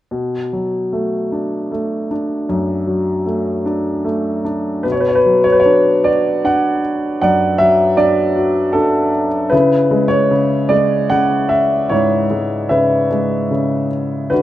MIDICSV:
0, 0, Header, 1, 2, 480
1, 0, Start_track
1, 0, Tempo, 791557
1, 69, Time_signature, 3, 2, 24, 8
1, 3907, Tempo, 771208
1, 6307, Tempo, 802139
1, 8773, End_track
2, 0, Start_track
2, 0, Title_t, "Grand piano"
2, 0, Program_c, 0, 0
2, 68, Note_on_c, 0, 47, 35
2, 199, Control_c, 0, 64, 127
2, 320, Note_on_c, 0, 54, 29
2, 562, Note_on_c, 0, 57, 32
2, 802, Note_on_c, 0, 62, 30
2, 1032, Note_off_c, 0, 57, 0
2, 1041, Note_on_c, 0, 57, 33
2, 1254, Note_off_c, 0, 54, 0
2, 1270, Note_off_c, 0, 62, 0
2, 1279, Note_on_c, 0, 62, 35
2, 1484, Note_off_c, 0, 47, 0
2, 1511, Note_on_c, 0, 42, 43
2, 1740, Note_on_c, 0, 54, 34
2, 1956, Note_off_c, 0, 57, 0
2, 1977, Note_on_c, 0, 57, 36
2, 2193, Note_off_c, 0, 62, 0
2, 2217, Note_on_c, 0, 62, 36
2, 2444, Note_off_c, 0, 57, 0
2, 2453, Note_on_c, 0, 57, 38
2, 2669, Note_off_c, 0, 54, 0
2, 2688, Note_off_c, 0, 62, 0
2, 2697, Note_on_c, 0, 62, 36
2, 2917, Note_off_c, 0, 42, 0
2, 2926, Note_off_c, 0, 57, 0
2, 2930, Note_on_c, 0, 71, 52
2, 2934, Note_off_c, 0, 62, 0
2, 2941, Note_on_c, 0, 47, 45
2, 2948, Control_c, 0, 64, 0
2, 2982, Note_on_c, 0, 73, 52
2, 2985, Note_off_c, 0, 71, 0
2, 3035, Note_on_c, 0, 71, 55
2, 3036, Note_off_c, 0, 73, 0
2, 3050, Control_c, 0, 64, 127
2, 3083, Note_on_c, 0, 73, 51
2, 3087, Note_off_c, 0, 71, 0
2, 3125, Note_on_c, 0, 71, 59
2, 3136, Note_off_c, 0, 73, 0
2, 3188, Note_on_c, 0, 54, 34
2, 3298, Note_on_c, 0, 73, 64
2, 3307, Note_off_c, 0, 71, 0
2, 3348, Note_off_c, 0, 73, 0
2, 3348, Note_on_c, 0, 71, 55
2, 3392, Note_off_c, 0, 71, 0
2, 3394, Note_on_c, 0, 73, 67
2, 3431, Note_on_c, 0, 62, 37
2, 3664, Note_on_c, 0, 74, 65
2, 3671, Note_on_c, 0, 66, 36
2, 3679, Note_off_c, 0, 73, 0
2, 3898, Note_off_c, 0, 62, 0
2, 3908, Note_on_c, 0, 62, 43
2, 3911, Note_on_c, 0, 78, 68
2, 3913, Note_off_c, 0, 74, 0
2, 4127, Note_off_c, 0, 54, 0
2, 4366, Note_off_c, 0, 47, 0
2, 4367, Note_off_c, 0, 78, 0
2, 4388, Note_on_c, 0, 78, 70
2, 4391, Note_on_c, 0, 42, 47
2, 4397, Note_on_c, 0, 74, 52
2, 4604, Note_off_c, 0, 66, 0
2, 4617, Note_on_c, 0, 76, 77
2, 4631, Note_on_c, 0, 54, 41
2, 4634, Note_off_c, 0, 78, 0
2, 4839, Note_off_c, 0, 62, 0
2, 4842, Note_off_c, 0, 76, 0
2, 4849, Note_off_c, 0, 74, 0
2, 4858, Note_on_c, 0, 74, 73
2, 4861, Note_on_c, 0, 62, 43
2, 5099, Note_on_c, 0, 66, 42
2, 5329, Note_on_c, 0, 69, 66
2, 5333, Note_off_c, 0, 62, 0
2, 5342, Note_on_c, 0, 62, 42
2, 5352, Note_off_c, 0, 74, 0
2, 5559, Note_off_c, 0, 54, 0
2, 5672, Note_off_c, 0, 69, 0
2, 5798, Note_off_c, 0, 42, 0
2, 5800, Note_off_c, 0, 66, 0
2, 5807, Note_on_c, 0, 71, 70
2, 5809, Note_off_c, 0, 62, 0
2, 5819, Note_on_c, 0, 64, 50
2, 5823, Note_on_c, 0, 49, 54
2, 5831, Control_c, 0, 64, 0
2, 5934, Control_c, 0, 64, 127
2, 6065, Note_on_c, 0, 56, 45
2, 6154, Note_off_c, 0, 71, 0
2, 6172, Note_on_c, 0, 73, 75
2, 6304, Note_off_c, 0, 49, 0
2, 6313, Note_on_c, 0, 49, 49
2, 6521, Note_off_c, 0, 64, 0
2, 6538, Note_off_c, 0, 56, 0
2, 6540, Note_on_c, 0, 74, 68
2, 6547, Note_on_c, 0, 56, 47
2, 6550, Note_off_c, 0, 73, 0
2, 6782, Note_off_c, 0, 49, 0
2, 6784, Note_on_c, 0, 78, 75
2, 6791, Note_off_c, 0, 74, 0
2, 6791, Note_on_c, 0, 49, 45
2, 7019, Note_on_c, 0, 76, 68
2, 7034, Note_off_c, 0, 78, 0
2, 7262, Note_on_c, 0, 73, 68
2, 7266, Note_on_c, 0, 64, 46
2, 7270, Note_off_c, 0, 76, 0
2, 7271, Note_on_c, 0, 44, 50
2, 7482, Note_off_c, 0, 56, 0
2, 7508, Note_on_c, 0, 56, 38
2, 7718, Note_off_c, 0, 73, 0
2, 7723, Note_off_c, 0, 49, 0
2, 7739, Note_on_c, 0, 76, 57
2, 7743, Note_on_c, 0, 49, 41
2, 7747, Note_on_c, 0, 71, 43
2, 7961, Note_off_c, 0, 64, 0
2, 7978, Note_off_c, 0, 56, 0
2, 7987, Note_on_c, 0, 56, 37
2, 8219, Note_off_c, 0, 49, 0
2, 8228, Note_on_c, 0, 49, 39
2, 8441, Note_off_c, 0, 76, 0
2, 8445, Note_off_c, 0, 71, 0
2, 8687, Note_off_c, 0, 44, 0
2, 8689, Note_off_c, 0, 56, 0
2, 8695, Note_off_c, 0, 49, 0
2, 8701, Note_on_c, 0, 71, 62
2, 8708, Note_on_c, 0, 50, 47
2, 8711, Note_on_c, 0, 66, 43
2, 8717, Control_c, 0, 64, 0
2, 8773, Note_off_c, 0, 50, 0
2, 8773, Note_off_c, 0, 66, 0
2, 8773, Note_off_c, 0, 71, 0
2, 8773, End_track
0, 0, End_of_file